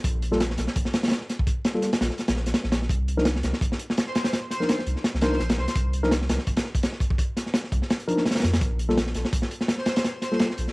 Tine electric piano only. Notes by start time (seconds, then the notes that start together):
0.32 G3 A#3 F4 A4
1.75 G3 A#3 F4 A4
3.17 F3 D4 D#4 A#4
4.60 F3 D4 D#4 A#4
5.22 F3 D4 D#4 A#4
6.03 F3 D4 D#4 A#4
8.08 F3 D4 D#4 A#4
8.89 G3 A#3 F4 A4
10.32 G3 A#3 F4 A4